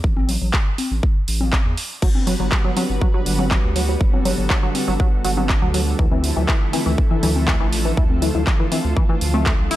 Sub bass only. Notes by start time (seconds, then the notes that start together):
0.04 A1
0.42 A1
0.91 A1
1.28 A1
1.65 E2
2.02 G1
2.40 G1
2.89 G1
3.26 G1
3.64 D2
4.01 G1
4.38 G1
4.88 G1
5.25 G1
5.62 D2
5.99 D2
6.37 D2
6.86 D2
7.23 D2
7.60 A1
7.97 D2
8.35 D2
8.84 D2
9.21 D2
9.59 C2